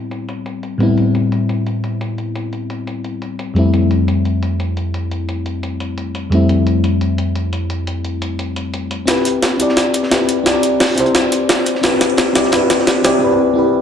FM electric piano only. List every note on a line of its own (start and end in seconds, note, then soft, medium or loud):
0.00 0.77 A2 medium
0.00 0.78 G3 medium
0.00 0.78 B3 medium
0.00 0.79 C4 medium
0.00 0.79 E4 medium
0.78 3.53 A2 medium
0.78 3.54 G3 medium
0.78 3.54 B3 medium
0.78 3.55 C4 medium
0.83 3.55 E4 medium
3.54 6.29 F2 medium
3.54 6.29 G3 medium
3.54 6.30 A3 medium
3.54 6.31 C4 medium
3.59 6.31 E4 medium
6.30 9.05 F2 medium
6.30 9.05 G3 medium
6.30 9.06 A3 medium
6.30 9.04 C4 medium
6.35 9.06 E4 medium
9.05 9.56 C4 medium
9.05 9.57 E4 medium
9.05 9.58 G4 medium
9.10 9.59 B4 medium
9.57 10.08 C4 medium
9.57 10.09 E4 medium
9.57 10.10 G4 medium
9.62 10.11 D5 medium
10.10 10.42 C4 medium
10.10 10.44 E4 medium
10.10 10.44 G4 medium
10.10 10.44 B4 medium
10.43 10.94 C4 medium
10.43 10.95 E4 medium
10.43 10.96 G4 medium
10.48 10.97 D5 medium
10.95 11.80 C4 medium
10.95 11.81 E4 medium
10.95 11.82 G4 medium
11.00 11.83 C5 medium
11.81 12.32 C4 medium
11.81 12.33 E4 medium
11.81 12.34 G4 medium
11.86 12.35 B4 medium
12.33 12.49 C4 medium
12.33 12.51 E4 medium
12.33 12.52 G4 medium
12.38 12.53 D5 medium
12.50 13.01 C4 medium
12.50 13.02 E4 medium
12.50 13.03 G4 medium
12.55 13.04 B4 medium
13.02 13.18 C4 medium
13.02 13.20 E4 medium
13.02 13.21 G4 medium
13.07 13.22 D5 medium
13.19 13.52 C4 medium
13.19 13.54 E4 medium
13.19 13.55 G4 medium
13.24 13.56 B4 medium
13.54 13.81 C4 medium
13.54 13.81 E4 medium
13.54 13.81 G4 medium
13.59 13.81 B4 medium